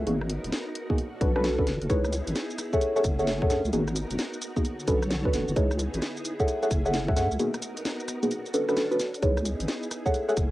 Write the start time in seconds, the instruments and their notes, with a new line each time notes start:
0.07 wobble bass G#1, synth stab A#3 B3 D#4 F#4 G#4, string machine B3 D#4 F#4 A#4, closed hi-hat
0.21 cross-stick
0.29 closed hi-hat
0.44 wobble bass D#1, closed hi-hat
0.52 snare, closed hi-hat
0.75 closed hi-hat
0.90 synth stab A#3 B3 D#4 F#4 G#4, kick
0.98 string machine C#4 D4 A4, closed hi-hat
1.21 wobble bass B1, synth stab C#4 D4 F#4 A4 B4, kick, closed hi-hat
1.36 synth stab C#4 D4 F#4 A4 B4, cross-stick
1.44 synth stab C#4 D4 F#4 A4 B4, snare, closed hi-hat
1.59 synth stab C#4 D4 F#4 A4 B4, kick
1.67 wobble bass F#1, snare, closed hi-hat
1.81 wobble bass F#1, closed hi-hat
1.90 wobble bass C#2, string machine B3 D#4 E4 G#4, synth stab D#4 E4 G#4 B4 C#5, kick, closed hi-hat, shaker
2.05 cross-stick, shaker
2.13 closed hi-hat, shaker
2.27 wobble bass G#1, closed hi-hat, shaker
2.36 snare, closed hi-hat, shaker
2.50 shaker
2.59 cross-stick, closed hi-hat, shaker
2.73 synth stab G#4 A4 C#5 E5 F#5, kick, shaker
2.81 string machine A3 C#4 G#4, closed hi-hat, shaker
2.96 synth stab G#4 A4 C#5 E5 F#5, shaker
3.04 wobble bass F#1, kick, closed hi-hat, shaker
3.19 synth stab G#4 A4 C#5 E5 F#5, shaker
3.27 snare, closed hi-hat, shaker
3.42 synth stab G#4 A4 C#5 E5 F#5, kick
3.50 wobble bass F#2, synth stab G#4 A4 C#5 E5 F#5, snare, closed hi-hat, shaker
3.65 wobble bass C#2, shaker
3.73 wobble bass G#1, synth stab A#3 B3 D#4 F#4 G#4, string machine B3 D#4 F#4 A#4, closed hi-hat, shaker
3.88 cross-stick, shaker
3.96 closed hi-hat, shaker
4.11 wobble bass D#1, closed hi-hat, shaker
4.19 snare, closed hi-hat, shaker
4.34 shaker
4.42 closed hi-hat, shaker
4.56 synth stab A#3 B3 D#4 F#4 G#4, kick, shaker
4.65 string machine D3 A4 C#5, closed hi-hat, shaker
4.79 shaker
4.87 wobble bass B1, synth stab C#4 D4 F#4 A4 B4, kick, closed hi-hat, shaker
5.02 cross-stick, shaker
5.10 snare, closed hi-hat, shaker
5.25 synth stab C#4 D4 F#4 A4 B4, kick
5.33 wobble bass F#1, snare, closed hi-hat, shaker
5.48 wobble bass F#1, shaker
5.56 wobble bass C#2, string machine B3 D#4 E4 G#4, synth stab D#4 E4 G#4 B4 C#5, kick, closed hi-hat, shaker
5.71 cross-stick, shaker
5.79 closed hi-hat, shaker
5.94 wobble bass G#1, closed hi-hat, shaker
6.02 snare, closed hi-hat, shaker
6.17 shaker
6.25 closed hi-hat, shaker
6.40 synth stab G#4 A4 C#5 E5 F#5, kick, shaker
6.48 string machine A3 C#4, closed hi-hat, shaker
6.63 synth stab G#4 A4 C#5 E5 F#5, shaker
6.71 wobble bass F#1, kick, closed hi-hat, shaker
6.85 synth stab G#4 A4 C#5 E5 F#5, shaker
6.94 snare, closed hi-hat, shaker
7.08 synth stab G#4 A4 C#5 E5 F#5, kick
7.16 wobble bass F#2, synth stab G#4 A4 C#5 E5 F#5, snare, closed hi-hat, shaker
7.31 wobble bass C#2, shaker
7.39 synth stab A#3 B3 D#4 F#4 G#4, string machine B3 D#4 F#4 A#4, closed hi-hat, shaker
7.54 cross-stick, closed hi-hat, shaker
7.62 closed hi-hat, shaker
7.77 closed hi-hat, shaker
7.85 snare, closed hi-hat, shaker
8.00 shaker
8.08 cross-stick, closed hi-hat, shaker
8.23 synth stab A#3 B3 D#4 F#4 G#4, closed hi-hat, shaker
8.31 string machine C#4 D4 A4, closed hi-hat, shaker
8.46 shaker
8.54 synth stab C#4 D4 F#4 A4 B4, closed hi-hat, shaker
8.69 synth stab C#4 D4 F#4 A4 B4, cross-stick, shaker
8.77 synth stab C#4 D4 F#4 A4 B4, snare, closed hi-hat, shaker
8.91 synth stab C#4 D4 F#4 A4 B4, shaker
9.00 snare, closed hi-hat, shaker
9.14 closed hi-hat, shaker
9.22 wobble bass C#2, string machine B3 D#4 E4 G#4, synth stab D#4 E4 G#4 B4 C#5, kick, closed hi-hat, shaker
9.37 cross-stick, shaker
9.45 closed hi-hat, shaker
9.60 wobble bass G#1, closed hi-hat, shaker
9.68 snare, closed hi-hat, shaker
9.83 shaker
9.91 cross-stick, closed hi-hat, shaker
10.06 synth stab G#4 A4 C#5 E5 F#5, kick, shaker
10.14 string machine A3 C#4, closed hi-hat, shaker
10.29 synth stab G#4 A4 C#5 E5 F#5, shaker
10.37 wobble bass F#1, kick, closed hi-hat, shaker